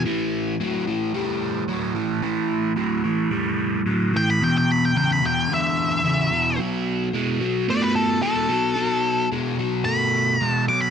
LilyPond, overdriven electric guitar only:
\new Staff \with { instrumentName = "Overdriven electric guitar" } { \clef bass \time 4/4 \key a \major \tempo 4 = 110 <a, e>4 <a, fis>8 <a, e>8 <a, g>4 <a, fis>8 <a, e>8 | <a, e>4 <a, fis>8 <a, e>8 <a, g>4 <a, fis>8 <a, e>8 | <e, b,>4 <e, cis>8 <e, b,>8 <e, d>4 <e, cis>8 <e, b,>8 | <b, fis>4 <b, gis>8 <b, fis>8 <b, a>4 <b, gis>8 <b, fis>8 |
<b, fis>4 <b, gis>8 <b, fis>8 <b, a>4 <b, gis>8 <b, fis>8 | }